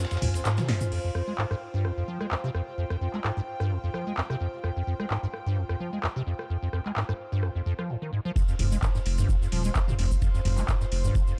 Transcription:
Already playing: string section F4 C5 G#5
0.04 snare, ride
0.11 acid bass F2, snare, ride, shaker
0.16 snare, ride
0.22 acid bass D#2, mid tom, open hi-hat
0.34 acid bass F2, ride, shaker
0.45 acid bass G#2, snare, clap, ride, shaker
0.57 acid bass C3, snare, high tom, ride, shaker
0.68 acid bass G#2, snare, mid tom, open hi-hat, ride
0.81 mid tom, shaker
0.92 acid bass F2, crash
1.04 acid bass F2
1.15 acid bass F2, cross-stick
1.27 acid bass G#3
1.38 acid bass G#2, clap
1.51 acid bass G2, string section G5, cross-stick
1.74 acid bass G2
1.85 acid bass F2, cross-stick
1.97 acid bass F2
2.08 acid bass F3
2.21 acid bass G#3, cross-stick
2.31 acid bass F2, clap
2.44 acid bass C3
2.55 acid bass F2, cross-stick
2.78 acid bass F2
2.90 acid bass F2, cross-stick
3.01 acid bass F2
3.14 acid bass G#3, clap
3.24 acid bass G#2, cross-stick, clap
3.37 acid bass G2
3.60 acid bass G2, cross-stick
3.71 acid bass F2
3.83 acid bass F2
3.94 acid bass F3, cross-stick
4.07 acid bass G#3
4.17 acid bass F2, clap
4.30 acid bass C3, cross-stick
4.41 acid bass F2
4.64 acid bass F2, cross-stick
4.76 acid bass F2
4.87 acid bass F2
5.00 acid bass G#3, cross-stick
5.10 acid bass G#2, clap
5.23 acid bass G2
5.34 cross-stick
5.46 acid bass G2
5.57 acid bass F2
5.69 acid bass F2, cross-stick
5.80 acid bass F3
5.93 acid bass G#3
6.03 acid bass F2, cross-stick, clap
6.16 acid bass C3
6.27 acid bass F2
6.39 cross-stick
6.50 acid bass F2
6.62 acid bass F2
6.73 acid bass F2, cross-stick
6.86 acid bass G#3, clap
6.96 acid bass G#2, clap
7.09 acid bass G2, cross-stick
7.32 acid bass G2
7.43 acid bass F2, cross-stick
7.55 acid bass F2
7.66 acid bass F2
7.79 acid bass F3, cross-stick
7.89 acid bass G#2
8.02 acid bass D#3
8.13 acid bass G#2
8.25 acid bass F3
8.36 acid bass F2, string section F4, kick, ride, shaker
8.48 acid bass F2, string section C5, shaker
8.59 sub bass F1, acid bass F2, mid tom, open hi-hat, ride
8.72 acid bass G#3, shaker
8.82 acid bass G#2, kick, snare, clap, ride, shaker
8.94 acid bass G2, snare, shaker
9.06 sub bass F1, open hi-hat, ride
9.18 acid bass G2, ride, shaker
9.29 acid bass F2, kick, ride, shaker
9.42 acid bass F2, shaker
9.52 sub bass D#1, acid bass F3, open hi-hat, ride
9.64 acid bass G#3, shaker
9.75 acid bass F2, kick, snare, clap, ride, shaker
9.88 acid bass C3, mid tom, shaker
9.98 sub bass F1, acid bass F2, snare, open hi-hat, ride
10.11 kick, shaker
10.22 acid bass F2, kick, ride, shaker
10.34 acid bass F2, shaker
10.45 sub bass F1, acid bass F2, snare, mid tom, open hi-hat, ride
10.57 acid bass G#3, clap, shaker
10.68 acid bass G#2, kick, snare, clap, ride, shaker
10.81 acid bass G2, snare, shaker
10.92 sub bass F1, open hi-hat, ride
11.04 acid bass G2, shaker
11.15 acid bass F2, kick, ride, shaker
11.27 acid bass F2, shaker

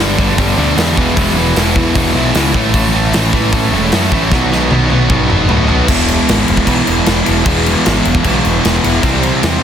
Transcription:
Already playing: picked electric bass G1
0.00 distorted electric guitar G2 D3 G3 B3 D4
0.18 picked electric bass G1, distorted electric guitar G2 D3 G3 B3 D4, kick
0.37 picked electric bass G1, distorted electric guitar G2 D3 G3 B3 D4, kick, open hi-hat
0.57 picked electric bass D2, distorted electric guitar G2 D3 G3 B3 D4
0.76 picked electric bass E2, distorted electric guitar G2 D3 G3 B3 D4, snare, open hi-hat
0.96 picked electric bass E1, distorted electric guitar E2 B2 E3 G#3 B3 E4, kick
1.16 picked electric bass E1, distorted electric guitar E2 B2 E3 G#3 B3 E4, kick, open hi-hat
1.36 distorted electric guitar E2 B2 E3 G#3 B3 E4
1.55 picked electric bass E1, distorted electric guitar E2 B2 E3 G#3 B3 E4, snare, open hi-hat
1.74 picked electric bass E1, distorted electric guitar E2 B2 E3 G#3 B3 E4, kick
1.95 picked electric bass E1, distorted electric guitar E2 B2 E3 G#3 B3 E4, kick, open hi-hat
2.14 picked electric bass B1, distorted electric guitar E2 B2 E3 G#3 B3 E4
2.35 picked electric bass C#2, distorted electric guitar E2 B2 E3 G#3 B3 E4, snare, open hi-hat
2.54 picked electric bass A1, distorted electric guitar A2 E3 A3 C#4 E4, kick
2.74 picked electric bass A1, distorted electric guitar A2 E3 A3 C#4 E4, kick, open hi-hat
2.94 distorted electric guitar A2 E3 A3 C#4 E4
3.13 picked electric bass A1, distorted electric guitar A2 E3 A3 C#4 E4, snare, open hi-hat
3.33 picked electric bass A1, distorted electric guitar A2 E3 A3 C#4 E4, kick
3.53 picked electric bass A1, distorted electric guitar A2 E3 A3 C#4 E4, kick, open hi-hat
3.71 picked electric bass E1, distorted electric guitar A2 E3 A3 C#4 E4
3.92 picked electric bass F#2, distorted electric guitar A2 E3 A3 C#4 E4, snare, open hi-hat
4.12 picked electric bass A1, distorted electric guitar A2 E3 A3 C#4 E4, kick
4.31 picked electric bass B1, distorted electric guitar B2 D#3 F#3 B3 D#4, kick, snare
4.51 distorted electric guitar B2 D#3 F#3 B3 D#4, snare
4.70 picked electric bass B1, distorted electric guitar B2 D#3 F#3 B3 D#4, high tom
4.90 picked electric bass B1, distorted electric guitar B2 D#3 F#3 B3 D#4, high tom
5.09 picked electric bass B1, distorted electric guitar B2 D#3 F#3 B3 D#4, kick, mid tom
5.29 picked electric bass F#1, distorted electric guitar B2 D#3 F#3 B3 D#4, mid tom
5.48 picked electric bass A2, distorted electric guitar B2 D#3 F#3 B3 D#4, floor tom
5.68 picked electric bass B1, distorted electric guitar B2 D#3 F#3 B3 D#4, floor tom
5.86 picked electric bass E1, distorted electric guitar E2 B2 E3 G#3 B3 E4, kick, crash
6.08 crash
6.29 picked electric bass G#1, snare, crash
6.48 picked electric bass E1, crash
6.57 kick
6.66 picked electric bass B1, distorted electric guitar E2 B2 E3, kick, crash
6.87 picked electric bass E1, crash
7.06 picked electric bass E1, snare, crash
7.25 picked electric bass E1, distorted electric guitar E3 G#3 B3 E4, crash
7.45 picked electric bass E1, distorted electric guitar E2 B2 E3 G#3 B3 E4, kick, crash
7.66 crash
7.86 picked electric bass G#1, snare, crash
8.05 picked electric bass E1, crash
8.15 kick
8.24 picked electric bass B1, distorted electric guitar E2 B2 E3, kick, crash
8.45 picked electric bass E1, crash
8.65 picked electric bass E1, snare, crash
8.84 picked electric bass E1, distorted electric guitar E3 G#3 B3 E4, crash
9.02 picked electric bass C2, distorted electric guitar C3 E3 G3 C4 E4, kick, crash
9.23 crash
9.43 picked electric bass E2, snare, crash

